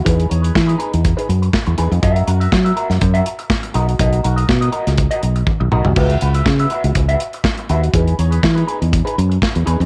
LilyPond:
<<
  \new Staff \with { instrumentName = "Clean electric guitar" } { \time 4/4 \key e \lydian \tempo 4 = 122 <dis' gis' b'>8 <dis' gis' cis''>16 <dis' gis' b'>16 r16 <dis' gis' b'>16 <dis' gis' b'>8 r16 <dis' gis' b'>8 r8. <dis' gis' b'>8 | <fis' ais' e''>8 <fis' ais' fis''>16 <fis' ais' e''>16 r16 <fis' ais' e''>16 <fis' ais' e''>8 r16 <fis' ais' e''>8 r8. <fis' ais' dis''>8 | <fis' ais' dis''>8 <fis' ais' fis''>16 <fis' ais' dis''>16 r16 <fis' ais' dis''>16 <fis' ais' dis''>8 r16 <fis' ais' dis''>8 r8. <fis' ais' dis''>8 | <fis' b' e''>8 <fis' b' fis''>16 <fis' b' e''>16 r16 <fis' b' e''>16 <fis' b' e''>8 r16 <fis' b' e''>8 r8. <fis' b' e''>8 |
<dis' gis' b'>8 <dis' gis' cis''>16 <dis' gis' b'>16 r16 <dis' gis' b'>16 <dis' gis' b'>8 r16 <dis' gis' b'>8 r8. <dis' gis' b'>8 | }
  \new Staff \with { instrumentName = "Fingered electric bass" } { \clef bass \time 4/4 \key e \lydian e,8 e,8 e8 r16 e,8 r16 fis,8 r16 e,16 e,16 eis,16 | fis,8 fis,8 fis8 r16 fis,16 fis,8 r4 b,,8 | b,,8 b,,8 b,8 r16 cis,8 r16 b,,8 r16 b,,16 b,,16 bis,,16 | cis,8 cis,8 cis8 r16 cis,16 cis,8 r4 dis,8 |
e,8 e,8 e8 r16 e,8 r16 fis,8 r16 e,16 e,16 eis,16 | }
  \new DrumStaff \with { instrumentName = "Drums" } \drummode { \time 4/4 <hh bd>16 hh16 hh16 hh16 <bd sn>16 hh16 hh16 hh16 <hh bd>16 hh16 hh16 hh16 <bd sn>16 hh16 hh16 hh16 | <hh bd>16 hh16 hh16 hh16 <bd sn>16 hh16 hh16 <hh sn>16 <hh bd>16 hh16 hh16 hh16 <bd sn>16 hh16 hh16 hh16 | <hh bd>16 hh16 hh16 hh16 <bd sn>16 hh16 hh16 <hh sn>16 <hh bd>16 hh16 hh16 hh16 <bd tommh>8 toml16 tomfh16 | <cymc bd>16 hh16 hh16 hh16 <bd sn>16 hh16 hh16 hh16 <hh bd>16 hh16 hh16 hh16 <bd sn>16 hh16 hh16 hh16 |
<hh bd>16 hh16 hh16 hh16 <bd sn>16 hh16 hh16 hh16 <hh bd>16 hh16 hh16 hh16 <bd sn>16 hh16 hh16 hh16 | }
>>